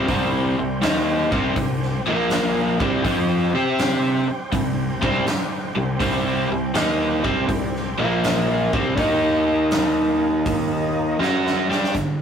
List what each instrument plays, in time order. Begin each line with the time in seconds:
0.06 fingered electric bass C2, overdriven electric guitar C3 G3 C4, tonewheel organ C4 G4 C5 G5, kick, open hi-hat
0.58 fingered electric bass C2, overdriven electric guitar C3 G3
0.82 fingered electric bass D#2, overdriven electric guitar D#3 A#3 D#4, snare, open hi-hat
1.32 fingered electric bass C2, overdriven electric guitar C3 G3 C4, kick
1.56 fingered electric bass C2, overdriven electric guitar C3 G3, kick, open hi-hat
1.82 snare
2.05 fingered electric bass A#1, overdriven electric guitar A#2 F3 A#3, tonewheel organ A#3 F4 A#4 F5
2.30 snare, open hi-hat
2.80 fingered electric bass C2, overdriven electric guitar C3 G3 C4, tonewheel organ C4 G4 C5 G5, kick
3.04 fingered electric bass F2, overdriven electric guitar F3 C4 F4, kick, open hi-hat
3.53 fingered electric bass C3, overdriven electric guitar C4 G4 C5
3.78 snare, open hi-hat
4.28 muted fingered electric bass stroke, muted overdriven electric guitar stroke
4.52 fingered electric bass C2, overdriven electric guitar C3 G3, kick, open hi-hat
5.01 fingered electric bass C2, overdriven electric guitar C3 G3 C4, kick
5.25 muted fingered electric bass stroke, muted overdriven electric guitar stroke, snare, open hi-hat
5.76 fingered electric bass C2, overdriven electric guitar C3 G3, tonewheel organ C4 G4 C5 G5
6.00 fingered electric bass C2, overdriven electric guitar C3 G3 C4, kick, open hi-hat
6.49 fingered electric bass C2, overdriven electric guitar C3 G3
6.74 fingered electric bass D#2, overdriven electric guitar D#3 A#3 D#4, snare, open hi-hat
7.24 fingered electric bass C2, overdriven electric guitar C3 G3 C4, kick
7.49 fingered electric bass C2, overdriven electric guitar C3 G3, kick, open hi-hat
7.76 snare
7.98 fingered electric bass A#1, overdriven electric guitar A#2 F3 A#3, tonewheel organ A#3 F4 A#4 F5
8.24 snare, open hi-hat
8.73 fingered electric bass C2, overdriven electric guitar C3 G3 C4, kick
8.97 fingered electric bass D#2, overdriven electric guitar D#3 A#3 D#4, tonewheel organ A#3 D#4 A#4 D#5, kick, open hi-hat
9.71 snare, open hi-hat
10.45 kick, open hi-hat
11.20 fingered electric bass F#2, overdriven electric guitar F#3 C#4 F#4, tonewheel organ C5, snare
11.47 snare
11.69 fingered electric bass G2, overdriven electric guitar G3 D4 G4, snare
11.84 snare
11.94 fingered electric bass G1, overdriven electric guitar G2 D3, kick, closed hi-hat